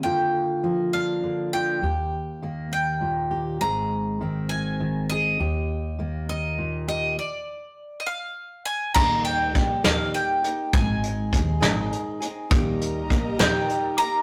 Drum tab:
CC |------|------|------|------|
HH |------|------|------|------|
SD |------|------|------|------|
BD |------|------|------|------|

CC |------|x-----|------|------|
HH |------|-xxxxx|xxxxxx|xxxxxx|
SD |------|---o--|---o--|---o--|
BD |------|o-o---|o-o---|o-o---|